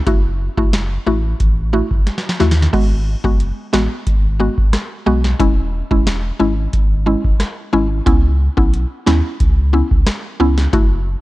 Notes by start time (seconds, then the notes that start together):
0.07 F#1 A3 E4 F#4, kick, closed hi-hat
0.58 F#1 A3 E4 F#4, kick
0.73 snare, closed hi-hat
1.06 A1 A3 E4 F#4
1.40 A1, kick, closed hi-hat
1.73 A3 E4 F#4
1.91 F#1, kick
2.07 snare, closed hi-hat
2.18 snare
2.29 snare
2.40 D#2 A3 E4 F#4, snare
2.51 snare
2.62 snare
2.73 G#1 G#3 B3 F#4, kick, closed hi-hat, crash
3.24 F#1 G#3 B3 F#4, kick
3.40 closed hi-hat
3.73 A1 G#3 B3 F#4, snare
4.07 G#1, kick, closed hi-hat
4.39 G#3 B3 F#4
4.58 G#1, kick
4.73 cross-stick, snare, closed hi-hat
5.06 B1 G#3 B3 F#4
5.24 snare
5.40 E1 G#3 C#4 E4, kick, closed hi-hat
5.91 E1 G#3 C#4 E4, kick
6.07 snare, closed hi-hat
6.40 G#1 G#3 C#4 E4
6.73 G#1, kick, closed hi-hat
7.06 G#3 C#4 E4
7.24 E1, kick
7.40 cross-stick, snare, closed hi-hat
7.73 G#1 G#3 C#4 E4
8.06 C#2 B3 C#4 E4, kick, closed hi-hat
8.57 B1 B3 C#4 E4, kick
8.73 closed hi-hat
9.06 D#2 B3 C#4 E4, snare
9.40 C#2, kick, closed hi-hat
9.73 B3 C#4 E4
9.91 C#2, kick
10.06 cross-stick, snare, closed hi-hat
10.40 C#2 B3 C#4 E4
10.58 snare
10.73 F#1 A3 E4 F#4, kick, closed hi-hat